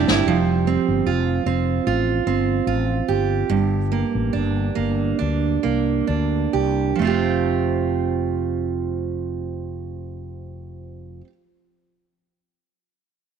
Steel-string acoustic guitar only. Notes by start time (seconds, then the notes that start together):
Already playing: C3 G3 D4 G4
0.10 E4
0.28 F3
0.67 C4
1.06 F4
1.46 C4
1.87 F4
2.27 C4
2.67 F4
3.08 G4
3.50 G2
3.92 A#3
4.33 D4
4.75 A#3
5.19 D4
5.63 A#3
6.07 D4
6.53 G4
6.95 F3 A3
7.02 C4 F4
7.07 G4